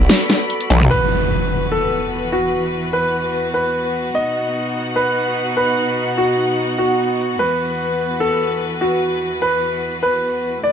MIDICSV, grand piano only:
0, 0, Header, 1, 2, 480
1, 0, Start_track
1, 0, Tempo, 405405
1, 1072, Time_signature, 4, 2, 24, 8
1, 12694, End_track
2, 0, Start_track
2, 0, Title_t, "Grand piano"
2, 0, Program_c, 0, 0
2, 1072, Note_on_c, 0, 71, 91
2, 1940, Note_off_c, 0, 71, 0
2, 2032, Note_on_c, 0, 69, 86
2, 2660, Note_off_c, 0, 69, 0
2, 2752, Note_on_c, 0, 66, 83
2, 3380, Note_off_c, 0, 66, 0
2, 3471, Note_on_c, 0, 71, 90
2, 4100, Note_off_c, 0, 71, 0
2, 4191, Note_on_c, 0, 71, 84
2, 4820, Note_off_c, 0, 71, 0
2, 4911, Note_on_c, 0, 75, 89
2, 5780, Note_off_c, 0, 75, 0
2, 5871, Note_on_c, 0, 71, 86
2, 6500, Note_off_c, 0, 71, 0
2, 6592, Note_on_c, 0, 71, 85
2, 7220, Note_off_c, 0, 71, 0
2, 7312, Note_on_c, 0, 66, 86
2, 7941, Note_off_c, 0, 66, 0
2, 8032, Note_on_c, 0, 66, 84
2, 8660, Note_off_c, 0, 66, 0
2, 8752, Note_on_c, 0, 71, 91
2, 9620, Note_off_c, 0, 71, 0
2, 9712, Note_on_c, 0, 69, 86
2, 10340, Note_off_c, 0, 69, 0
2, 10432, Note_on_c, 0, 66, 81
2, 11060, Note_off_c, 0, 66, 0
2, 11152, Note_on_c, 0, 71, 87
2, 11780, Note_off_c, 0, 71, 0
2, 11872, Note_on_c, 0, 71, 85
2, 12500, Note_off_c, 0, 71, 0
2, 12592, Note_on_c, 0, 74, 90
2, 12694, Note_off_c, 0, 74, 0
2, 12694, End_track
0, 0, End_of_file